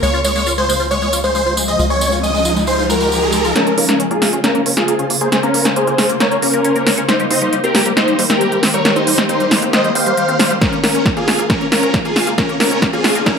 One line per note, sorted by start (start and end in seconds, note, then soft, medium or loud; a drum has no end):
0.00 1.77 C#2 medium
0.00 3.52 C#3 medium
0.00 3.52 F3 medium
0.00 0.10 G#3 medium
0.00 3.52 G#3 medium
0.00 1.75 F4 medium
0.00 0.19 C#5 loud
0.00 tambourine soft
0.00 riser medium
0.14 0.21 F4 medium
0.14 tambourine soft
0.24 0.32 G#3 medium
0.24 0.49 C#5 medium
0.24 tambourine medium
0.36 0.43 G#3 medium
0.36 tambourine soft
0.46 0.54 F4 medium
0.46 tambourine medium
0.58 0.65 G#3 medium
0.58 0.82 C5 medium
0.58 tambourine soft
0.69 0.76 G#3 medium
0.69 tambourine medium
0.80 0.87 F4 medium
0.80 tambourine soft
0.91 0.98 G#3 medium
0.91 1.15 C#5 medium
0.91 tambourine soft
1.02 1.09 G#3 medium
1.02 tambourine soft
1.13 1.20 F4 medium
1.13 tambourine medium
1.24 1.31 G#3 medium
1.24 1.56 C5 medium
1.24 tambourine soft
1.35 1.42 G#3 medium
1.35 tambourine soft
1.46 1.53 F4 medium
1.46 tambourine soft
1.57 1.64 G#3 medium
1.57 tambourine medium
1.68 1.75 G#3 medium
1.68 1.84 D#5 medium
1.68 tambourine soft
1.79 3.53 C#2 medium
1.79 3.54 D#4 medium
1.79 1.86 F4 medium
1.79 tambourine soft
1.90 1.97 G#3 medium
1.90 2.14 C#5 medium
1.90 tambourine soft
2.01 2.09 G#3 medium
2.01 tambourine medium
2.12 2.20 F4 medium
2.12 tambourine soft
2.23 2.31 G#3 medium
2.23 2.56 D#5 medium
2.23 tambourine soft
2.34 2.42 G#3 medium
2.34 tambourine soft
2.45 2.53 F4 medium
2.45 tambourine medium
2.56 2.64 G#3 medium
2.56 tambourine soft
2.67 2.75 G#3 medium
2.67 2.84 C5 medium
2.67 tambourine soft
2.79 2.86 F4 medium
2.79 tambourine soft
2.89 2.97 G#3 medium
2.89 3.47 A#4 loud
2.89 tambourine medium
3.00 3.08 G#3 medium
3.00 tambourine soft
3.12 3.19 F4 medium
3.12 tambourine soft
3.23 3.30 G#3 medium
3.23 tambourine soft
3.32 3.41 G#3 medium
3.32 tambourine medium
3.45 3.52 F4 medium
3.45 tambourine soft
3.56 7.05 C#3 medium
3.56 13.39 A#3 medium
3.56 3.63 A#3 medium
3.56 3.72 C#4 medium
3.56 7.05 F4 medium
3.56 3.72 A#4 loud
3.56 13.39 C5 medium
3.56 snare soft
3.56 closed hi-hat medium
3.67 3.74 C#4 medium
3.67 closed hi-hat soft
3.78 3.85 A#1 loud
3.78 3.85 A#3 medium
3.78 4.02 C#4 medium
3.78 4.02 A#4 medium
3.78 open hi-hat loud
3.89 3.96 A#1 medium
3.89 3.96 A#3 medium
3.89 snare soft
3.89 closed hi-hat medium
4.00 4.07 C#4 medium
4.00 closed hi-hat medium
4.11 4.18 A#2 medium
4.11 4.18 A#3 medium
4.11 4.35 F4 medium
4.11 4.35 G#4 medium
4.11 closed hi-hat soft
4.22 4.29 A#1 medium
4.22 4.29 A#3 medium
4.22 snare soft
4.22 open hi-hat medium
4.33 4.40 A#1 medium
4.33 4.40 C#4 medium
4.33 closed hi-hat medium
4.44 4.51 A#3 medium
4.44 4.68 C#4 medium
4.44 4.68 A#4 medium
4.44 snare soft
4.44 closed hi-hat medium
4.55 4.62 A#3 medium
4.55 closed hi-hat soft
4.66 4.74 A#1 medium
4.66 4.73 C#4 medium
4.66 open hi-hat loud
4.77 4.85 A#1 medium
4.77 4.84 A#3 medium
4.77 5.09 F4 medium
4.77 5.09 G#4 medium
4.77 snare soft
4.77 closed hi-hat medium
4.88 4.95 A#3 medium
4.88 closed hi-hat medium
4.99 5.07 G#1 medium
4.99 5.06 C#4 medium
4.99 closed hi-hat soft
5.10 5.18 A#1 medium
5.10 5.17 A#3 medium
5.10 open hi-hat medium
5.21 5.29 A#1 medium
5.21 5.28 A#3 medium
5.21 5.37 G#4 medium
5.21 5.37 C5 medium
5.21 closed hi-hat medium
5.32 5.39 C#4 medium
5.32 snare medium
5.32 closed hi-hat medium
5.43 5.50 A#3 medium
5.43 5.67 C#4 medium
5.43 5.67 A#4 medium
5.43 closed hi-hat soft
5.54 5.62 A#1 medium
5.54 5.61 A#3 medium
5.54 open hi-hat loud
5.65 5.73 A#1 medium
5.65 5.72 C#4 medium
5.65 snare soft
5.65 closed hi-hat medium
5.76 5.84 A#3 medium
5.76 6.09 G#4 medium
5.76 6.09 C5 medium
5.76 closed hi-hat medium
5.87 5.95 A#2 medium
5.87 5.95 A#3 medium
5.87 closed hi-hat soft
5.98 6.06 A#1 medium
5.98 6.06 C#4 medium
5.98 snare medium
5.98 open hi-hat medium
6.09 6.17 A#1 medium
6.09 6.17 A#3 medium
6.09 closed hi-hat medium
6.20 6.28 A#3 medium
6.20 6.37 A#4 medium
6.20 6.37 C#5 medium
6.20 snare medium
6.20 closed hi-hat medium
6.31 6.39 C#4 medium
6.31 closed hi-hat soft
6.42 6.50 A#1 medium
6.42 6.50 A#3 medium
6.42 7.00 C#4 medium
6.42 7.00 A#4 loud
6.42 open hi-hat loud
6.53 6.61 A#1 medium
6.53 6.61 A#3 medium
6.53 closed hi-hat medium
6.64 6.72 C#4 medium
6.64 closed hi-hat soft
6.75 6.83 G#1 medium
6.75 6.83 A#3 medium
6.75 closed hi-hat soft
6.87 6.94 A#1 medium
6.87 6.94 A#3 medium
6.87 snare medium
6.87 open hi-hat medium
6.97 7.05 A#1 medium
6.97 7.05 C#4 medium
6.97 closed hi-hat medium
7.08 10.58 D#3 medium
7.08 7.16 G3 medium
7.08 7.25 D#4 medium
7.08 10.58 G4 medium
7.08 7.25 C5 loud
7.08 snare medium
7.08 closed hi-hat soft
7.20 7.27 G3 medium
7.20 closed hi-hat soft
7.31 7.38 D#2 medium
7.31 7.38 C4 medium
7.31 7.55 D#4 medium
7.31 7.55 C5 medium
7.31 open hi-hat loud
7.42 7.49 D#2 medium
7.42 7.49 G3 medium
7.42 closed hi-hat medium
7.53 7.60 G3 medium
7.53 closed hi-hat soft
7.64 7.71 D#1 medium
7.64 7.71 C4 medium
7.64 7.88 G4 medium
7.64 7.88 A#4 medium
7.64 closed hi-hat soft
7.75 7.82 D#2 medium
7.75 7.82 G3 medium
7.75 snare medium
7.75 open hi-hat loud
7.86 7.93 D#2 medium
7.86 7.93 G3 medium
7.86 closed hi-hat medium
7.97 8.04 C4 medium
7.97 8.21 D#4 medium
7.97 8.21 C5 medium
7.97 snare medium
7.97 closed hi-hat soft
8.08 8.15 G3 medium
8.08 closed hi-hat soft
8.19 8.26 D#2 medium
8.19 8.26 G3 medium
8.19 open hi-hat loud
8.30 8.38 D#2 medium
8.30 8.37 C4 medium
8.30 8.62 G4 medium
8.30 8.62 A#4 medium
8.30 snare medium
8.30 closed hi-hat medium
8.41 8.48 G3 medium
8.41 closed hi-hat soft
8.52 8.60 C2 medium
8.52 8.59 G3 medium
8.52 closed hi-hat soft
8.63 8.71 D#2 medium
8.63 8.70 C4 medium
8.63 snare medium
8.63 open hi-hat loud
8.74 8.82 D#2 medium
8.74 8.81 G3 medium
8.74 8.90 A#4 medium
8.74 8.90 C#5 medium
8.74 closed hi-hat soft
8.85 8.92 G3 medium
8.85 snare medium
8.85 closed hi-hat soft
8.96 9.03 C4 medium
8.96 9.20 D#4 medium
8.96 9.20 C5 medium
8.96 closed hi-hat soft
9.07 9.15 D#2 medium
9.07 9.14 G3 medium
9.07 open hi-hat loud
9.18 9.26 D#2 medium
9.18 9.26 G3 medium
9.18 snare medium
9.18 closed hi-hat medium
9.29 9.37 C4 medium
9.29 9.61 D#4 medium
9.29 9.61 C5 medium
9.29 closed hi-hat soft
9.40 9.48 D#1 medium
9.40 9.48 G3 medium
9.40 closed hi-hat soft
9.51 9.59 D#2 medium
9.51 9.59 G3 medium
9.51 snare medium
9.51 open hi-hat medium
9.62 9.70 D#2 medium
9.62 9.70 C4 medium
9.62 closed hi-hat medium
9.73 9.81 G3 medium
9.73 9.89 C5 medium
9.73 9.89 D#5 medium
9.73 snare medium
9.73 closed hi-hat soft
9.84 9.92 G3 medium
9.84 closed hi-hat soft
9.95 10.03 D#2 medium
9.95 10.03 C4 medium
9.95 10.53 C5 medium
9.95 10.53 F5 loud
9.95 open hi-hat loud
10.06 10.14 D#2 medium
10.06 10.14 G3 medium
10.06 closed hi-hat medium
10.17 10.25 G3 medium
10.17 closed hi-hat soft
10.28 10.36 D#2 medium
10.28 10.36 C4 medium
10.28 closed hi-hat soft
10.39 10.47 D#2 medium
10.39 10.47 G3 medium
10.39 snare medium
10.39 open hi-hat medium
10.50 10.58 D#2 medium
10.50 10.58 G3 medium
10.50 closed hi-hat soft
10.61 13.39 C#3 medium
10.61 10.78 C#4 medium
10.61 10.69 C#4 medium
10.61 13.39 F4 medium
10.61 10.78 A#4 medium
10.61 kick loud
10.61 snare medium
10.61 closed hi-hat soft
10.61 riser medium
10.73 10.80 A#3 medium
10.73 closed hi-hat soft
10.84 10.91 A#1 loud
10.84 10.91 A#3 medium
10.84 11.08 C#4 medium
10.84 11.08 A#4 medium
10.84 snare medium
10.84 open hi-hat loud
10.95 11.02 A#1 medium
10.95 11.02 C#4 medium
10.95 closed hi-hat medium
11.06 11.13 A#3 medium
11.06 kick loud
11.06 snare medium
11.06 closed hi-hat soft
11.17 11.24 A#2 medium
11.17 11.24 A#3 medium
11.17 11.41 F4 medium
11.17 11.41 G#4 medium
11.17 closed hi-hat soft
11.28 11.35 A#1 medium
11.28 11.35 C#4 medium
11.28 snare medium
11.28 open hi-hat medium
11.39 11.46 A#1 medium
11.39 11.46 A#3 medium
11.39 closed hi-hat medium
11.50 11.66 C#4 medium
11.50 11.57 C#4 medium
11.50 11.66 A#4 medium
11.50 kick loud
11.50 snare medium
11.50 closed hi-hat soft
11.61 11.68 A#3 medium
11.61 closed hi-hat soft
11.72 11.79 A#1 medium
11.72 11.79 A#3 medium
11.72 11.96 C#4 medium
11.72 11.96 A#4 medium
11.72 snare medium
11.72 open hi-hat loud
11.83 11.90 A#1 medium
11.83 11.90 C#4 medium
11.83 closed hi-hat medium
11.94 12.01 A#3 medium
11.94 kick loud
11.94 snare medium
11.94 closed hi-hat soft
12.05 12.12 G#1 medium
12.05 12.12 A#3 medium
12.05 12.29 F4 medium
12.05 12.29 G#4 medium
12.05 closed hi-hat soft
12.16 12.24 A#1 medium
12.16 12.23 C#4 medium
12.16 snare medium
12.16 open hi-hat medium
12.27 12.35 A#1 medium
12.27 12.34 A#3 medium
12.27 closed hi-hat soft
12.38 12.54 C#4 medium
12.38 12.45 C#4 medium
12.38 12.54 A#4 loud
12.38 kick loud
12.38 snare medium
12.38 closed hi-hat medium
12.49 12.56 A#3 medium
12.49 closed hi-hat soft
12.60 12.68 A#1 loud
12.60 12.67 A#3 medium
12.60 12.84 C#4 medium
12.60 12.84 A#4 medium
12.60 snare medium
12.60 open hi-hat loud
12.71 12.79 A#1 medium
12.71 12.78 C#4 medium
12.71 closed hi-hat medium
12.82 12.89 A#3 medium
12.82 kick loud
12.82 snare medium
12.82 closed hi-hat soft
12.93 13.01 A#2 medium
12.93 13.01 A#3 medium
12.93 13.17 F4 medium
12.93 13.17 G#4 medium
12.93 closed hi-hat soft
13.04 13.12 A#1 medium
13.04 13.12 C#4 medium
13.04 snare medium
13.04 open hi-hat medium
13.15 13.23 A#1 medium
13.15 13.23 A#3 medium
13.15 closed hi-hat medium
13.26 13.34 C#4 medium
13.26 13.39 C#4 medium
13.26 13.39 A#4 medium
13.26 kick loud
13.26 snare medium
13.26 closed hi-hat medium